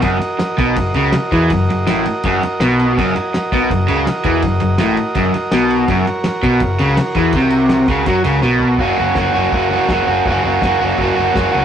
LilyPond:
<<
  \new Staff \with { instrumentName = "Transistor combo organ" } { \time 4/4 \key fis \major \tempo 4 = 164 <fis' ais' dis''>1~ | <fis' ais' dis''>1 | <fis' ais' dis''>1~ | <fis' ais' dis''>1 |
<fis' ais' cis''>1~ | <fis' ais' cis''>1 | <fis' ais' cis''>1~ | <fis' ais' cis''>1 | }
  \new Staff \with { instrumentName = "Overdriven electric guitar" } { \time 4/4 \key fis \major fis,8 r4 b,8 fis,8 cis8 r8 e8 | fis,8 fis,8 a,8 r8 fis,8 r8 b,4 | fis,8 r4 b,8 fis,8 cis8 r8 e8 | fis,8 fis,8 a,8 r8 fis,8 r8 b,4 |
fis,8 r4 b,8 fis,8 cis8 r8 e8 | bis,4. cis8 fis8 cis8 b,4 | <fis ais cis' fis'>8 <ais cis' fis'>8 <fis ais cis' fis'>8 <fis ais cis' fis'>8 <fis ais cis' fis'>8 <fis ais cis' fis'>8 <fis ais cis' fis'>8 <ais cis' fis'>8 | <fis ais cis' fis'>8 <ais cis' fis'>8 <fis ais cis' fis'>8 <fis ais cis' fis'>8 <fis ais cis' fis'>8 <fis ais cis' fis'>8 <fis ais cis' fis'>8 <ais cis' fis'>8 | }
  \new Staff \with { instrumentName = "Picked electric bass" } { \clef bass \time 4/4 \key fis \major fis,,8 r4 b,,8 fis,,8 cis,8 r8 e,8 | fis,,8 fis,,8 a,,8 r8 fis,,8 r8 b,,4 | fis,,8 r4 b,,8 fis,,8 cis,8 r8 e,8 | fis,,8 fis,,8 a,,8 r8 fis,,8 r8 b,,4 |
fis,,8 r4 b,,8 fis,,8 cis,8 r8 e,8 | bis,,4. cis,8 fis,8 cis,8 b,,4 | fis,,8 fis,,8 fis,,8 fis,,8 fis,,4 fis,,8 fis,,8 | fis,,8 fis,,8 fis,,8 fis,,8 fis,,8 fis,,8 fis,,8 cis,8 | }
  \new DrumStaff \with { instrumentName = "Drums" } \drummode { \time 4/4 <bd cymr>8 cymr8 <cymr sn>8 <bd cymr>8 <bd cymr>8 cymr8 <cymr sn>8 <bd cymr>8 | <bd cymr>8 cymr8 <cymr sn>8 cymr8 <bd cymr>8 cymr8 <cymr sn>8 cymr8 | <cymc bd>8 cymr8 <cymr sn>8 <bd cymr>8 <bd cymr>8 cymr8 <cymr sn>8 <bd cymr>8 | <bd cymr>8 cymr8 <cymr sn>8 cymr8 <bd cymr>8 cymr8 <cymr sn>8 cymr8 |
<bd cymr>8 cymr8 <cymr sn>8 <bd cymr>8 <bd cymr>8 cymr8 <cymr sn>8 <bd cymr>8 | <bd cymr>8 cymr8 <cymr sn>8 <bd cymr>8 <bd cymr>8 cymr8 sn8 tomfh8 | <bd tomfh>8 tomfh8 <bd sn tomfh>8 tomfh8 <bd tomfh>8 tomfh8 <bd sn tomfh>8 tomfh8 | <bd tomfh>8 tomfh8 <bd sn tomfh>8 tomfh8 <bd tomfh>8 tomfh8 <bd sn tomfh>8 tomfh8 | }
>>